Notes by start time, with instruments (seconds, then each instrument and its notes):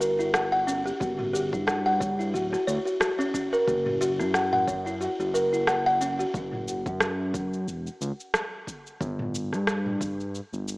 Already playing: analog synth bass G1
0.01 kalimba A#4, cabasa
0.19 kalimba E4, cabasa
0.34 kalimba F#5, cross-stick, cabasa
0.52 kalimba F#5
0.67 kalimba C#4, cabasa
0.86 kalimba G4, cabasa
1.00 analog synth bass G1, kalimba F#4, kick, cabasa
1.19 kalimba F#4, mid tom
1.33 kalimba G4, cabasa
1.53 analog synth bass G2, kalimba E4, kick, cabasa
1.67 kalimba F#5, cross-stick, cabasa
1.86 kalimba F#5
2.00 kalimba C#5, kick, cabasa
2.19 kalimba E4, cabasa
2.34 analog synth bass D1, kalimba F#4, cabasa
2.53 kalimba F#4, cross-stick, cabasa
2.67 analog synth bass D2, kalimba C#5, cabasa
2.85 kalimba F#4, cabasa
3.00 kalimba F#4, cross-stick, cabasa
3.19 kalimba C#4, cabasa
3.34 kalimba C#4, kick, cabasa
3.53 kalimba A#4, cabasa
3.67 analog synth bass F#1, kalimba F#4, kick, cabasa
3.86 kalimba F#4, mid tom
4.01 kalimba F#4, cabasa
4.19 analog synth bass F#2, kalimba E4, cross-stick, cabasa
4.34 kalimba F#5, cross-stick, cabasa
4.53 kalimba F#5, mid tom
4.68 kalimba C#5, kick, cabasa
4.86 kalimba E4, cabasa
5.01 kalimba F#4, cabasa
5.19 analog synth bass F#1, kalimba F#4, cabasa
5.34 kalimba A#4, cabasa
5.53 kalimba E4, cabasa
5.67 kalimba F#5, cross-stick, cabasa
5.86 kalimba F#5
6.01 kalimba C#4, cabasa
6.19 kalimba F#4, cabasa
6.34 analog synth bass F#1, kick, cabasa
6.53 mid tom
6.68 cabasa
6.86 analog synth bass F#2, kick, cabasa
7.00 cross-stick, cabasa
7.34 kick, cabasa
7.53 cabasa
7.67 analog synth bass E1, cabasa
7.87 cabasa
8.01 analog synth bass C#2, cabasa
8.20 cabasa
8.34 cross-stick, cabasa
8.67 kick, cabasa
8.87 cabasa
9.01 analog synth bass G1, kick, cabasa
9.19 mid tom
9.35 cabasa
9.53 analog synth bass G2, cross-stick, cabasa
9.67 cross-stick, cabasa
9.86 mid tom
10.01 kick, cabasa
10.20 cabasa
10.35 cabasa
10.53 analog synth bass G1, cabasa
10.68 cabasa